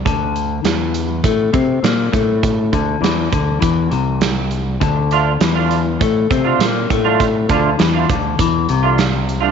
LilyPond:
<<
  \new Staff \with { instrumentName = "Overdriven electric guitar" } { \time 4/4 \key d \minor \tempo 4 = 101 r1 | r1 | r8 <d a d' f'>16 r8 <d a d' f'>16 r4 r16 <d a d' f'>16 r8. <d a d' f'>16 | r8 <d a d' f'>16 r8 <d a d' f'>16 r4 r16 <d a d' f'>16 r8. <d a d' f'>16 | }
  \new Staff \with { instrumentName = "Overdriven electric guitar" } { \clef bass \time 4/4 \key d \minor d4 e4 a8 c'8 bes8 a8~ | a8 d8 e8 d8 e8 c4. | d4 e4 a8 c'8 bes8 a8~ | a8 d8 e8 d8 e8 c4. | }
  \new Staff \with { instrumentName = "Fingered electric bass" } { \clef bass \time 4/4 \key d \minor d,4 e,4 a,8 c8 bes,8 a,8~ | a,8 d,8 e,8 d,8 e,8 c,4. | d,4 e,4 a,8 c8 bes,8 a,8~ | a,8 d,8 e,8 d,8 e,8 c,4. | }
  \new DrumStaff \with { instrumentName = "Drums" } \drummode { \time 4/4 <hh bd>8 hh8 <hh sn>8 hh8 <hh bd>8 <hh bd>8 <hh sn>8 <hh bd>8 | <hh bd>8 <hh bd>8 <hh sn>8 <hh bd>8 <hh bd>8 hh8 <hh sn>8 hh8 | <hh bd>8 hh8 <hh sn>8 hh8 <hh bd>8 <hh bd>8 <hh sn>8 <hh bd>8 | <hh bd>8 <hh bd>8 <hh sn>8 <hh bd>8 <hh bd>8 hh8 <hh sn>8 hh8 | }
>>